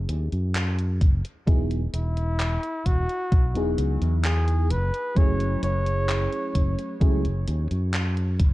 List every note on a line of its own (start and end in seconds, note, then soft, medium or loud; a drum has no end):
0.09 0.28 D#2 medium
0.09 closed hi-hat medium
0.32 1.03 F#2 medium
0.32 closed hi-hat soft
0.55 clap loud
0.55 closed hi-hat medium
0.78 closed hi-hat soft
1.01 1.21 F#1 medium
1.01 kick loud
1.01 closed hi-hat medium
1.25 closed hi-hat soft
1.47 1.86 E1 medium
1.47 1.81 F#3 medium
1.47 1.81 B3 medium
1.47 1.81 D#4 medium
1.47 1.81 E4 medium
1.47 1.82 G#4 medium
1.47 kick loud
1.47 closed hi-hat medium
1.71 closed hi-hat soft
1.93 2.57 E1 medium
1.93 2.87 E4 loud
1.93 closed hi-hat medium
2.17 closed hi-hat soft
2.40 clap loud
2.40 closed hi-hat medium
2.63 closed hi-hat soft
2.86 3.05 E1 medium
2.86 3.78 F#4 loud
2.86 kick medium
2.86 closed hi-hat medium
3.09 closed hi-hat soft
3.32 3.55 B1 medium
3.32 kick loud
3.32 closed hi-hat medium
3.54 3.74 E1 medium
3.54 4.67 F#3 medium
3.54 4.67 B3 medium
3.54 4.68 D#4 medium
3.54 4.68 E4 medium
3.54 4.69 G#4 medium
3.54 closed hi-hat soft
3.78 3.98 C#2 medium
3.78 closed hi-hat medium
4.02 4.72 E2 medium
4.02 closed hi-hat soft
4.24 4.72 G#4 loud
4.24 clap loud
4.24 closed hi-hat medium
4.48 closed hi-hat soft
4.71 4.90 F#1 medium
4.71 5.19 B4 loud
4.71 closed hi-hat medium
4.94 closed hi-hat soft
5.15 5.55 F#1 loud
5.15 6.95 F#3 medium
5.15 6.95 A3 medium
5.15 6.96 C#4 medium
5.15 6.96 E4 medium
5.15 6.97 G#4 medium
5.15 5.63 C#5 loud
5.15 kick loud
5.15 closed hi-hat medium
5.40 closed hi-hat soft
5.63 6.26 F#1 medium
5.63 6.98 C#5 loud
5.63 closed hi-hat medium
5.86 closed hi-hat soft
6.09 clap loud
6.09 closed hi-hat medium
6.32 closed hi-hat soft
6.55 6.75 F#1 medium
6.55 kick medium
6.55 closed hi-hat medium
6.79 closed hi-hat soft
7.00 7.26 C#2 medium
7.00 7.22 F#3 medium
7.00 7.22 A3 medium
7.00 7.23 C#4 medium
7.00 7.23 E4 medium
7.00 7.23 G#4 medium
7.00 kick loud
7.00 closed hi-hat medium
7.25 7.44 F#1 medium
7.25 closed hi-hat soft
7.47 7.67 D#2 medium
7.47 closed hi-hat medium
7.71 8.41 F#2 medium
7.71 closed hi-hat soft
7.94 clap loud
7.94 closed hi-hat medium
8.17 closed hi-hat soft
8.40 8.54 F#1 medium
8.40 kick medium
8.40 closed hi-hat medium